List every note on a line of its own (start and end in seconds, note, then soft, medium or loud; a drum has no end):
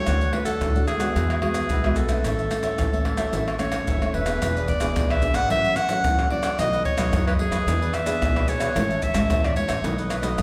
0.00 0.29 A3 medium
0.00 0.29 D4 medium
0.00 0.29 F#4 medium
0.00 0.34 C#5 loud
0.06 0.30 D2 medium
0.06 0.59 D3 soft
0.06 0.19 D4 medium
0.06 0.19 A4 medium
0.06 0.20 D5 medium
0.06 0.20 F#5 medium
0.06 pandeiro medium
0.06 tamborim medium
0.06 maracas medium
0.06 surdo medium
0.21 0.32 A4 soft
0.21 0.32 D5 soft
0.21 0.32 F#5 soft
0.21 pandeiro soft
0.21 maracas soft
0.32 0.70 A3 medium
0.32 0.70 D4 medium
0.32 0.70 F#4 medium
0.32 0.45 B4 medium
0.32 muted cavaquinho stroke soft
0.32 pandeiro medium
0.32 tamborim medium
0.45 0.84 A4 medium
0.45 0.73 A4 medium
0.45 0.73 D5 medium
0.45 0.72 F#5 medium
0.45 pandeiro medium
0.45 maracas medium
0.45 surdo soft
0.61 1.07 D2 medium
0.61 1.13 A2 medium
0.61 pandeiro medium
0.61 tamborim medium
0.61 maracas medium
0.61 surdo loud
0.75 0.98 A3 medium
0.75 0.98 D4 medium
0.75 0.98 F#4 medium
0.75 0.86 A4 soft
0.75 0.86 D5 soft
0.75 0.87 F#5 soft
0.75 pandeiro soft
0.75 maracas soft
0.87 1.00 D4 soft
0.87 1.38 G#4 medium
0.87 1.00 A4 soft
0.87 0.99 D5 medium
0.87 0.98 F#5 medium
0.87 pandeiro medium
0.87 tamborim medium
0.87 maracas medium
0.87 surdo soft
0.99 1.37 G#3 medium
0.99 1.38 B3 medium
0.99 1.38 F#4 medium
0.99 1.14 A4 medium
0.99 1.14 D5 medium
0.99 1.13 F#5 medium
0.99 pandeiro medium
0.99 tamborim medium
0.99 maracas medium
1.15 1.62 E2 medium
1.15 1.67 E3 medium
1.15 1.28 F#4 medium
1.15 1.28 G#4 medium
1.15 1.29 B4 medium
1.15 1.29 E5 medium
1.15 pandeiro medium
1.15 maracas medium
1.15 surdo medium
1.30 1.41 G#4 soft
1.30 1.41 B4 soft
1.30 1.42 E5 soft
1.30 pandeiro soft
1.30 tamborim medium
1.30 maracas soft
1.42 1.68 G#3 medium
1.42 1.68 B3 medium
1.42 1.68 F#4 medium
1.42 1.98 G#4 medium
1.42 muted cavaquinho stroke soft
1.42 pandeiro medium
1.42 tamborim medium
1.42 surdo soft
1.54 pandeiro medium
1.54 tamborim medium
1.54 maracas medium
1.70 2.16 B1 medium
1.70 2.22 B2 soft
1.70 1.83 F#4 medium
1.70 1.83 G#4 medium
1.70 1.83 B4 medium
1.70 1.83 E5 medium
1.70 pandeiro medium
1.70 maracas medium
1.70 surdo loud
1.84 2.07 G#3 medium
1.84 2.07 B3 medium
1.84 2.07 F#4 medium
1.84 1.96 G#4 soft
1.84 1.96 B4 soft
1.84 1.97 E5 medium
1.84 pandeiro soft
1.84 tamborim medium
1.84 maracas soft
1.96 2.09 F#4 medium
1.96 2.09 G#4 medium
1.96 3.59 A4 medium
1.96 2.09 B4 medium
1.96 2.07 E5 medium
1.96 pandeiro medium
1.96 maracas medium
2.09 2.46 A3 medium
2.09 2.46 C#4 medium
2.09 2.47 E4 medium
2.09 2.23 G#4 soft
2.09 2.23 B4 soft
2.09 2.22 E5 soft
2.09 pandeiro medium
2.09 tamborim medium
2.09 maracas medium
2.09 surdo soft
2.24 2.48 A1 medium
2.24 2.76 A2 medium
2.24 2.37 E4 medium
2.24 2.37 A4 medium
2.24 2.37 C#5 medium
2.24 2.37 E5 medium
2.24 pandeiro medium
2.24 tamborim medium
2.24 maracas medium
2.24 surdo medium
2.38 2.50 A4 soft
2.38 2.50 C#5 soft
2.38 2.50 E5 soft
2.38 pandeiro soft
2.38 maracas soft
2.50 2.87 A3 medium
2.50 2.87 C#4 medium
2.50 2.88 E4 medium
2.50 muted cavaquinho stroke soft
2.50 pandeiro medium
2.50 tamborim medium
2.50 maracas medium
2.63 2.91 A4 medium
2.63 2.91 C#5 medium
2.63 2.90 E5 medium
2.63 pandeiro medium
2.63 maracas medium
2.63 surdo soft
2.78 3.25 A1 medium
2.78 3.30 E3 soft
2.78 pandeiro medium
2.78 tamborim medium
2.78 maracas medium
2.78 surdo loud
2.93 3.15 A3 medium
2.93 3.16 C#4 medium
2.93 3.16 E4 medium
2.93 3.05 A4 soft
2.93 3.05 C#5 soft
2.93 3.05 E5 soft
2.93 pandeiro soft
2.93 maracas soft
3.05 3.18 E4 soft
3.05 3.18 A4 soft
3.05 3.17 C#5 soft
3.05 3.16 E5 soft
3.05 pandeiro medium
3.05 tamborim medium
3.05 surdo soft
3.17 3.55 A3 medium
3.17 3.55 C#4 medium
3.17 3.55 E4 medium
3.17 3.32 A4 medium
3.17 3.32 C#5 medium
3.17 3.31 E5 medium
3.17 pandeiro medium
3.17 tamborim medium
3.17 maracas medium
3.33 3.79 A1 medium
3.33 3.85 A2 medium
3.33 3.46 E4 medium
3.33 3.46 A4 medium
3.33 3.46 C#5 medium
3.33 3.46 E5 medium
3.33 pandeiro medium
3.33 maracas medium
3.33 surdo medium
3.47 3.59 A4 soft
3.47 3.59 C#5 soft
3.47 3.59 E5 soft
3.47 pandeiro soft
3.47 tamborim medium
3.47 maracas soft
3.59 3.85 A3 medium
3.59 3.85 C#4 medium
3.59 3.86 E4 medium
3.59 4.16 C#5 medium
3.59 muted cavaquinho stroke soft
3.59 pandeiro medium
3.59 tamborim medium
3.59 maracas medium
3.59 surdo soft
3.72 pandeiro medium
3.72 tamborim medium
3.72 maracas medium
3.87 4.12 F#1 medium
3.87 4.39 E3 medium
3.87 4.00 E4 medium
3.87 4.00 A4 medium
3.87 4.01 C#5 medium
3.87 4.01 E5 medium
3.87 pandeiro medium
3.87 maracas medium
3.87 surdo medium
4.02 4.24 A3 medium
4.02 4.24 C#4 medium
4.02 4.25 E4 medium
4.02 4.13 A4 soft
4.02 4.13 C#5 soft
4.02 4.14 E5 soft
4.02 pandeiro soft
4.02 tamborim medium
4.02 maracas soft
4.13 4.38 E1 medium
4.13 4.26 E4 medium
4.13 4.27 A4 medium
4.13 4.68 B4 medium
4.13 4.26 C#5 medium
4.13 4.25 E5 medium
4.13 pandeiro medium
4.13 surdo soft
4.26 4.64 B3 medium
4.26 4.64 D4 medium
4.26 4.64 G#4 medium
4.26 4.41 A4 soft
4.26 4.40 C#5 soft
4.26 4.40 E5 soft
4.26 pandeiro medium
4.26 tamborim medium
4.26 maracas medium
4.26 surdo soft
4.42 4.77 E1 loud
4.42 4.93 E3 medium
4.42 4.54 E4 soft
4.42 4.55 G#4 medium
4.42 4.55 B4 medium
4.42 4.55 D5 medium
4.42 pandeiro medium
4.42 tamborim medium
4.42 maracas medium
4.42 surdo medium
4.56 4.67 G#4 medium
4.56 4.67 B4 medium
4.56 4.67 D5 medium
4.56 pandeiro soft
4.56 maracas soft
4.68 5.12 D5 loud
4.68 muted cavaquinho stroke soft
4.68 pandeiro medium
4.68 maracas medium
4.68 surdo medium
4.80 4.93 E1 medium
4.80 5.18 B3 medium
4.80 5.18 D4 medium
4.80 5.18 G#4 medium
4.80 4.95 G#4 medium
4.80 4.94 B4 medium
4.80 4.94 D5 medium
4.80 pandeiro medium
4.80 tamborim medium
4.80 maracas medium
4.95 5.31 B1 medium
4.95 5.48 B2 medium
4.95 5.08 E4 medium
4.95 5.09 G#4 medium
4.95 5.09 B4 soft
4.95 5.09 D5 soft
4.95 pandeiro medium
4.95 tamborim medium
4.95 maracas medium
4.95 surdo loud
5.10 5.21 G#4 soft
5.10 5.22 B4 medium
5.10 5.22 D5 medium
5.10 5.37 E5 loud
5.10 pandeiro soft
5.10 tamborim medium
5.10 maracas soft
5.22 5.39 B3 medium
5.22 5.39 D4 medium
5.22 5.39 G#4 medium
5.22 muted cavaquinho stroke soft
5.22 pandeiro medium
5.22 maracas medium
5.34 5.47 G#1 medium
5.34 5.49 G#4 medium
5.34 5.49 B4 medium
5.34 5.48 D5 medium
5.34 5.50 F#5 loud
5.34 pandeiro medium
5.34 tamborim medium
5.34 maracas medium
5.50 5.97 A1 medium
5.50 6.02 A2 medium
5.50 5.76 F#3 medium
5.50 5.76 C#4 medium
5.50 5.76 E4 medium
5.50 5.63 F#4 soft
5.50 5.63 A4 soft
5.50 5.64 C#5 soft
5.50 5.78 E5 loud
5.50 5.64 F#5 medium
5.50 pandeiro medium
5.50 maracas medium
5.50 surdo medium
5.64 5.90 A4 soft
5.64 5.89 C#5 medium
5.64 5.88 F#5 medium
5.64 pandeiro soft
5.64 maracas soft
5.76 6.31 F#5 loud
5.76 pandeiro medium
5.76 tamborim medium
5.76 maracas medium
5.89 6.26 F#3 medium
5.89 6.27 C#4 medium
5.89 6.27 E4 medium
5.89 6.17 A4 medium
5.89 6.17 C#5 medium
5.89 6.16 F#5 medium
5.89 pandeiro medium
5.89 maracas medium
6.04 6.43 E2 medium
6.04 6.56 E3 medium
6.04 pandeiro medium
6.04 tamborim medium
6.04 maracas medium
6.04 surdo loud
6.19 6.30 A4 medium
6.19 6.31 C#5 medium
6.19 6.31 F#5 medium
6.19 pandeiro soft
6.19 tamborim medium
6.19 maracas soft
6.30 6.47 F#3 medium
6.30 6.48 C#4 medium
6.30 6.48 E4 medium
6.30 6.44 F#4 soft
6.30 6.43 A4 soft
6.30 6.42 C#5 soft
6.30 6.57 D5 loud
6.30 6.42 F#5 medium
6.30 pandeiro medium
6.43 6.56 A1 medium
6.43 6.57 A4 medium
6.43 6.57 C#5 medium
6.43 6.57 F#5 medium
6.43 pandeiro medium
6.43 tamborim medium
6.43 maracas medium
6.58 6.94 B1 medium
6.58 7.11 B2 medium
6.58 6.85 F#3 medium
6.58 6.85 A3 medium
6.58 6.71 D#4 soft
6.58 6.85 D#4 medium
6.58 6.72 A4 medium
6.58 6.72 B4 medium
6.58 6.84 D#5 loud
6.58 6.71 D#5 medium
6.58 pandeiro medium
6.58 tamborim medium
6.58 maracas medium
6.58 surdo medium
6.72 6.83 A4 medium
6.72 6.84 B4 medium
6.72 6.84 D#5 medium
6.72 pandeiro soft
6.72 maracas soft
6.84 7.24 C#5 loud
6.84 muted cavaquinho stroke soft
6.84 pandeiro medium
6.84 maracas medium
6.84 surdo medium
6.97 7.10 B1 medium
6.97 7.35 F#3 medium
6.97 7.35 A3 medium
6.97 7.35 D#4 medium
6.97 7.11 A4 medium
6.97 7.11 B4 medium
6.97 7.11 D#5 medium
6.97 pandeiro medium
6.97 tamborim medium
6.97 maracas medium
7.12 7.47 F#2 medium
7.12 7.65 F#2 medium
7.12 7.25 D#4 soft
7.12 7.26 A4 soft
7.12 7.26 B4 soft
7.12 7.25 D#5 medium
7.12 pandeiro medium
7.12 tamborim medium
7.12 maracas medium
7.12 surdo loud
7.26 7.38 A4 medium
7.26 7.38 B4 medium
7.26 7.33 B4 medium
7.26 7.38 D#5 medium
7.26 pandeiro soft
7.26 tamborim medium
7.26 maracas soft
7.38 7.56 F#3 medium
7.38 7.56 A3 medium
7.38 7.56 D#4 medium
7.38 7.96 G#4 medium
7.38 muted cavaquinho stroke soft
7.38 pandeiro medium
7.51 7.64 D#2 medium
7.51 7.66 A4 medium
7.51 7.65 B4 medium
7.51 7.65 D#5 medium
7.51 pandeiro medium
7.51 tamborim medium
7.51 maracas medium
7.66 8.13 E2 medium
7.66 8.19 E3 medium
7.66 7.93 B3 medium
7.66 7.93 D4 medium
7.66 7.79 E4 medium
7.66 7.80 G#4 medium
7.66 7.93 G#4 medium
7.66 7.80 B4 medium
7.66 7.79 D5 medium
7.66 pandeiro medium
7.66 maracas medium
7.66 surdo medium
7.81 8.06 G#4 soft
7.81 8.05 B4 medium
7.81 8.04 D5 medium
7.81 pandeiro soft
7.81 maracas soft
7.94 8.50 E5 loud
7.94 pandeiro medium
7.94 tamborim medium
7.94 maracas medium
8.05 8.43 B3 medium
8.05 8.43 D4 medium
8.05 8.44 G#4 medium
8.05 8.34 G#4 medium
8.05 8.33 B4 medium
8.05 8.33 D5 medium
8.05 pandeiro medium
8.05 maracas medium
8.21 8.60 B1 medium
8.21 8.73 B2 medium
8.21 pandeiro medium
8.21 tamborim medium
8.21 maracas medium
8.21 surdo loud
8.35 8.46 G#4 medium
8.35 8.47 B4 medium
8.35 8.47 D5 medium
8.35 pandeiro soft
8.35 tamborim medium
8.35 maracas soft
8.47 8.71 B3 soft
8.47 8.71 D4 medium
8.47 8.60 E4 medium
8.47 8.61 G#4 soft
8.47 8.71 G#4 medium
8.47 8.60 B4 medium
8.47 9.04 C#5 loud
8.47 8.59 D5 medium
8.47 pandeiro medium
8.47 maracas medium
8.60 8.73 A#1 medium
8.60 8.74 G#4 medium
8.60 8.74 B4 medium
8.60 8.74 D5 medium
8.60 pandeiro medium
8.60 tamborim medium
8.60 maracas medium
8.76 9.10 A1 loud
8.76 9.27 A2 medium
8.76 9.01 G#3 medium
8.76 9.01 C#4 medium
8.76 9.02 E4 medium
8.76 8.88 G#4 medium
8.76 8.88 C#5 medium
8.76 8.89 E5 medium
8.76 8.88 A5 medium
8.76 pandeiro medium
8.76 tamborim medium
8.76 maracas medium
8.76 surdo medium
8.89 9.01 C#5 medium
8.89 9.01 E5 medium
8.89 9.01 A5 medium
8.89 pandeiro soft
8.89 maracas soft
9.02 9.46 E5 loud
9.02 muted cavaquinho stroke soft
9.02 pandeiro medium
9.02 maracas medium
9.02 surdo medium
9.14 9.27 A1 medium
9.14 9.52 G#3 medium
9.14 9.52 C#4 medium
9.14 9.52 E4 medium
9.14 9.28 C#5 medium
9.14 9.28 E5 medium
9.14 9.27 A5 medium
9.14 pandeiro medium
9.14 tamborim medium
9.14 maracas medium
9.29 9.65 E2 loud
9.29 9.82 E3 medium
9.29 9.42 G#4 medium
9.29 9.42 C#5 soft
9.29 9.43 E5 soft
9.29 9.42 A5 medium
9.29 pandeiro medium
9.29 tamborim medium
9.29 maracas medium
9.29 surdo loud
9.44 9.54 C#5 medium
9.44 9.56 D5 medium
9.44 9.55 E5 medium
9.44 9.55 A5 medium
9.44 pandeiro soft
9.44 tamborim medium
9.44 maracas soft
9.55 9.79 G#3 medium
9.55 9.79 C#4 medium
9.55 9.80 E4 medium
9.55 10.04 C#5 loud
9.55 muted cavaquinho stroke soft
9.55 pandeiro medium
9.55 maracas medium
9.67 9.81 A1 medium
9.67 9.82 C#5 medium
9.67 9.82 E5 medium
9.67 9.81 A5 medium
9.67 pandeiro medium
9.67 tamborim medium
9.67 maracas medium
9.83 10.30 B1 medium
9.83 10.35 B2 medium
9.83 10.20 F#3 medium
9.83 10.20 A3 medium
9.83 9.96 D#4 soft
9.83 10.21 D#4 medium
9.83 9.96 A4 medium
9.83 9.97 B4 medium
9.83 9.96 D#5 medium
9.83 pandeiro medium
9.83 maracas medium
9.83 surdo medium
9.97 10.22 A4 medium
9.97 10.22 B4 medium
9.97 10.21 D#5 medium
9.97 pandeiro soft
9.97 maracas soft
10.04 10.12 C#5 medium
10.10 10.42 B4 medium
10.10 pandeiro medium
10.10 tamborim medium
10.10 maracas medium
10.22 10.42 F#3 medium
10.22 10.42 A3 medium
10.22 10.42 D#4 medium
10.22 10.42 A4 medium
10.22 10.42 B4 medium
10.22 10.42 D#5 medium
10.22 pandeiro medium
10.22 maracas medium
10.37 10.42 F#2 medium
10.37 pandeiro medium
10.37 tamborim medium
10.37 maracas medium
10.37 surdo loud